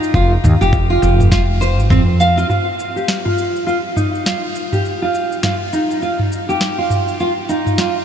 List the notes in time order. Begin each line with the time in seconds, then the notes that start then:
Already playing: D#4
0.03 shaker
0.14 F1 F4, kick, shaker
0.44 D#2, mid tom, shaker
0.61 F1 G4, shaker
0.73 kick, shaker
0.90 F4
1.02 F1, shaker
1.20 mid tom, shaker
1.31 F4, kick, snare, shaker
1.61 C5, shaker
1.78 G#1, shaker
1.90 F2 C4, kick, mid tom, shaker
2.20 F5, shaker
2.37 F4, shaker
2.49 F4, mid tom, shaker
2.79 shaker
2.96 G4, shaker
3.08 snare, shaker
3.25 F4, mid tom
3.38 shaker
3.56 shaker
3.67 F4, shaker
3.96 D#4, mid tom, shaker
4.15 shaker
4.26 F4, snare, shaker
4.55 shaker
4.72 G4, mid tom, shaker
4.85 shaker
5.02 F4
5.15 shaker
5.32 shaker
5.43 F4, snare, mid tom, shaker
5.73 D#4, shaker
5.91 shaker
6.02 F4, shaker
6.19 mid tom
6.32 shaker
6.49 G4, shaker
6.61 snare, shaker
6.78 F4
6.90 mid tom, shaker
7.08 shaker
7.20 F4, shaker
7.49 D#4, shaker
7.66 mid tom, shaker
7.78 F4, snare, shaker